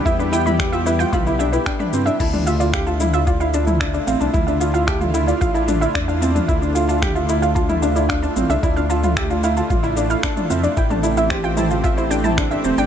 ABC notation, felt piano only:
X:1
M:4/4
L:1/16
Q:1/4=112
K:Ddor
V:1 name="Felt piano"
E D E E G F E F F E D E D D C D | E D F F G F E F F E D E D D C D | E D F F G F E F F E D E D D C D | E D F F G F E F F E D E D D C D |
E D F F G F E F F E D E D D C D | E D E E G F E F F E D E D D C D |]